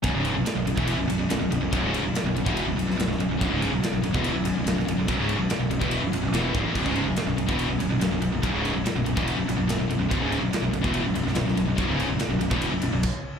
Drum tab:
CC |----------------|----------------|----------------|----------------|
RD |x-x-x-x-x-x-x-x-|x-x-x-x-x-x-x-x-|x-x-x-x-x-x-x-x-|x-x-x-x-x-x-x-x-|
SD |----o-------o---|----o------ooo--|----o-------oo--|----o-------o---|
BD |o------o--------|o------o--------|o------o--------|o------o------o-|

CC |x---------------|----------------|----------------|------------x---|
RD |--x-x-x-x-x-x-x-|x-x-x-x-x-x-x-x-|x-x-x-x-x-x-x-x-|x-x-x-x-x-x-----|
SD |----o-------o---|----o-------o---|----o------ooo--|----o-----------|
BD |oo-----o--------|o------o--------|o------o--------|o------o----o---|